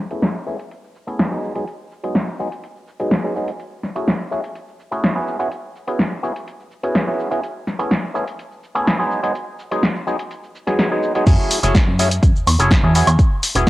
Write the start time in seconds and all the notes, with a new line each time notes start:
0.11 A3 B3 C#4 E4 G#4, closed hi-hat, cabasa
0.22 snare, closed hi-hat, cabasa
0.47 A3 B3 C#4 E4 G#4, cabasa
0.59 closed hi-hat, cabasa
0.71 closed hi-hat, cabasa
0.84 cabasa
0.95 cabasa
1.07 A3 B3 C#4 E4 G#4, closed hi-hat, cabasa
1.19 snare, closed hi-hat, cabasa
1.31 F#3 G#3 B3 D#4 G#4
1.43 cabasa
1.55 F#3 G#3 B3 D#4 G#4, closed hi-hat, cabasa
1.67 closed hi-hat, cabasa
1.92 cabasa
2.03 F#3 G#3 B3 D#4 G#4, closed hi-hat, cabasa
2.15 snare, closed hi-hat, cabasa
2.28 cabasa
2.39 F#3 G#3 B3 D#4 G#4, cabasa
2.52 closed hi-hat, cabasa
2.64 closed hi-hat, cabasa
2.76 cabasa
2.88 cabasa
3.00 F#3 G#3 B3 D#4 G#4, closed hi-hat, cabasa
3.11 snare, closed hi-hat, cabasa
3.24 F#3 G#3 B3 D#4 G#4
3.36 F#3 G#3 B3 D#4 G#4, cabasa
3.48 closed hi-hat, cabasa
3.60 closed hi-hat, cabasa
3.83 snare, cabasa
3.95 A3 C#4 E4 F#4 G#4, closed hi-hat, cabasa
4.08 snare, closed hi-hat, cabasa
4.31 A3 C#4 E4 F#4 G#4, cabasa
4.44 closed hi-hat, cabasa
4.55 closed hi-hat, cabasa
4.68 cabasa
4.80 cabasa
4.91 A3 C#4 E4 F#4 G#4, closed hi-hat, cabasa
5.04 snare, closed hi-hat, cabasa
5.15 B3 C#4 E4 F#4 G#4
5.28 cabasa
5.39 B3 C#4 E4 F#4 G#4, closed hi-hat, cabasa
5.52 closed hi-hat, cabasa
5.76 cabasa
5.87 B3 C#4 E4 F#4 G#4, closed hi-hat, cabasa
5.99 snare, closed hi-hat, cabasa
6.23 B3 C#4 E4 F#4 G#4, cabasa
6.36 closed hi-hat, cabasa
6.48 closed hi-hat, cabasa
6.60 cabasa
6.71 cabasa
6.83 B3 C#4 E4 F#4 G#4, closed hi-hat, cabasa
6.95 snare, closed hi-hat, cabasa
7.07 B3 C#4 E4 F#4 G#4
7.20 cabasa
7.31 B3 C#4 E4 F#4 G#4, closed hi-hat, cabasa
7.43 closed hi-hat, cabasa
7.67 snare, cabasa
7.79 A3 B3 C#4 E4 G#4, closed hi-hat, cabasa
7.91 snare, closed hi-hat, cabasa
8.14 A3 B3 C#4 E4 G#4, cabasa
8.28 closed hi-hat, cabasa
8.39 closed hi-hat, cabasa
8.52 cabasa
8.63 cabasa
8.75 A3 B3 C#4 E4 G#4, closed hi-hat, cabasa
8.87 snare, closed hi-hat, cabasa
8.99 F#3 G#3 B3 D#4 G#4
9.11 cabasa
9.23 F#3 G#3 B3 D#4 G#4, closed hi-hat, cabasa
9.35 closed hi-hat, cabasa
9.59 cabasa
9.71 F#3 G#3 B3 D#4 G#4, closed hi-hat, cabasa
9.83 snare, closed hi-hat, cabasa
9.96 cabasa
10.07 F#3 G#3 B3 D#4 G#4, cabasa
10.19 closed hi-hat, cabasa
10.31 closed hi-hat, cabasa
10.44 cabasa
10.55 cabasa
10.67 F#3 G#3 B3 D#4 G#4, snare, closed hi-hat, cabasa
10.79 snare, closed hi-hat, cabasa
10.91 F#3 G#3 B3 D#4 G#4
11.03 cabasa
11.15 F#3 G#3 B3 D#4 G#4, closed hi-hat, cabasa
11.27 F#2 F#3 A3 C#4 E4 G#4, kick, closed hi-hat, crash, cabasa
11.51 open hi-hat, cabasa
11.63 F#1 F#3 A3 C#4 E4 G#4, closed hi-hat, cabasa
11.75 kick, snare, closed hi-hat, cabasa
11.87 F#2
11.99 F#3 A3 C#4 E4 G#4, open hi-hat, cabasa
12.11 closed hi-hat, cabasa
12.23 F#2, kick, closed hi-hat, cabasa
12.35 E2, cabasa
12.47 E2, open hi-hat, cabasa, high woodblock
12.59 F#1 F#3 A3 C#4 E4 G#4, closed hi-hat, cabasa
12.71 kick, snare, closed hi-hat, cabasa
12.83 E2 F#3 A3 C#4 E4 G#4
12.95 F#3 B3 C#4 E4 G#4, open hi-hat, cabasa
13.07 E2, closed hi-hat, cabasa, high woodblock
13.19 kick, closed hi-hat, cabasa
13.43 open hi-hat, cabasa
13.55 E1 F#3 B3 C#4 E4 G#4, closed hi-hat, cabasa